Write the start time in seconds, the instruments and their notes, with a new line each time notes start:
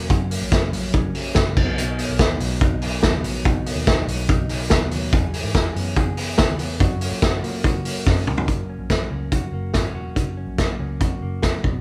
Already playing: clean electric guitar F#3 A#3
0.09 picked electric bass F#1, clean electric guitar F#2 C#4, kick, closed hi-hat
0.30 clean electric guitar A#3, open hi-hat
0.42 picked electric bass A#1
0.51 picked electric bass F#1, clean electric guitar B3, kick, snare, closed hi-hat
0.62 clean electric guitar C#4
0.73 picked electric bass A#1, clean electric guitar F#3, open hi-hat
0.94 clean electric guitar C#4, kick, closed hi-hat
1.15 clean electric guitar F#3, open hi-hat
1.35 picked electric bass F#1, clean electric guitar A#3, kick, snare, closed hi-hat
1.57 picked electric bass B1, clean electric guitar B2, kick, crash
1.78 clean electric guitar B2 D#4, closed hi-hat
1.99 clean electric guitar B3, open hi-hat
2.10 picked electric bass B1
2.19 picked electric bass D#2, clean electric guitar D#4, kick, snare, closed hi-hat
2.40 picked electric bass B1, clean electric guitar F#3, open hi-hat
2.61 clean electric guitar D#4, kick, closed hi-hat
2.82 clean electric guitar F#3, open hi-hat
3.03 picked electric bass D#2, clean electric guitar B3, kick, snare, closed hi-hat
3.24 picked electric bass A#1, clean electric guitar F#3, open hi-hat
3.45 picked electric bass B1, clean electric guitar B2 D#4, kick, closed hi-hat
3.66 clean electric guitar B3, open hi-hat
3.76 picked electric bass D#2
3.87 clean electric guitar D#4, kick, snare, closed hi-hat
4.07 picked electric bass B1, clean electric guitar F#3, open hi-hat
4.29 clean electric guitar D#4, kick, closed hi-hat
4.49 clean electric guitar F#3, open hi-hat
4.70 picked electric bass D#2, clean electric guitar B3, kick, snare, closed hi-hat
4.91 picked electric bass D#2, clean electric guitar F#3, open hi-hat
5.13 picked electric bass E2, clean electric guitar E3 G#4, kick, closed hi-hat
5.33 clean electric guitar E4, open hi-hat
5.44 picked electric bass G#2
5.55 picked electric bass E2, clean electric guitar G#4, kick, snare, closed hi-hat
5.75 picked electric bass F#2, clean electric guitar B3, open hi-hat
5.96 clean electric guitar G#4, kick, closed hi-hat
6.17 clean electric guitar B3, open hi-hat
6.38 picked electric bass D#2, clean electric guitar E4, kick, snare, closed hi-hat
6.59 picked electric bass E2, clean electric guitar B3, open hi-hat
6.80 picked electric bass F#2, clean electric guitar F#2 F#4, kick, closed hi-hat
7.01 clean electric guitar C#4, open hi-hat
7.12 picked electric bass A#2
7.22 picked electric bass F#2, clean electric guitar F#4, kick, snare, closed hi-hat
7.43 picked electric bass A#2, clean electric guitar A#3, open hi-hat
7.64 clean electric guitar F#4, kick, closed hi-hat
7.85 clean electric guitar A#3, open hi-hat
8.06 picked electric bass F#2, clean electric guitar C#4, kick, snare
8.27 picked electric bass C#2, clean electric guitar A#3, mid tom
8.38 floor tom
8.48 picked electric bass F#1, clean electric guitar F#2, kick, closed hi-hat
8.70 clean electric guitar C#4
8.79 picked electric bass A#1
8.90 clean electric guitar A#3, kick, snare, closed hi-hat
9.10 picked electric bass C#2, clean electric guitar C#4
9.32 picked electric bass A#1, clean electric guitar F#4, kick, closed hi-hat
9.52 picked electric bass F#1, clean electric guitar A#3
9.74 picked electric bass G#1, clean electric guitar B3, kick, snare, closed hi-hat
9.84 clean electric guitar C#4
9.94 picked electric bass E1, clean electric guitar F#4
10.16 picked electric bass F#1, clean electric guitar F#2, kick, closed hi-hat
10.37 clean electric guitar C#4
10.47 picked electric bass A#1
10.58 clean electric guitar A#3, kick, snare, closed hi-hat
10.79 picked electric bass C#2, clean electric guitar C#4
11.00 picked electric bass A#1, clean electric guitar F#4, kick, closed hi-hat
11.21 picked electric bass F#1, clean electric guitar A#3
11.42 picked electric bass A#1, clean electric guitar B3, kick, snare, closed hi-hat
11.54 clean electric guitar C#4
11.64 picked electric bass B1, clean electric guitar B2, kick